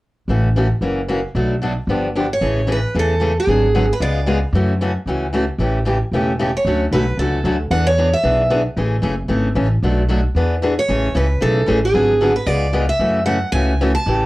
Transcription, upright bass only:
0.28 A1
0.81 F#1
1.35 B1
1.87 G1
2.41 A1
2.94 E2
3.47 G#1
4.00 C#2
4.53 F#2
5.06 C#2
5.58 A1
6.12 E1
6.65 D2
6.92 B1
7.18 C#2
7.44 D2
7.70 E2
8.24 B1
8.77 A1
9.02 F#1
9.29 G#1
9.55 A1
9.83 B1
10.34 E2
10.88 A1
11.15 C#2
11.41 B1
11.68 A1
11.94 G#1
12.46 C#2
12.99 F#2
13.52 C#2
14.06 A1

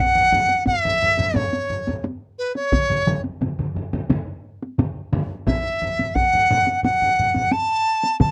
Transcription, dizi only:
Already playing: F#5
0.66 E5
1.36 C#5
2.38 B4
2.55 C#5
5.46 E5
6.14 F#5
6.83 F#5
7.51 A5
8.20 A5

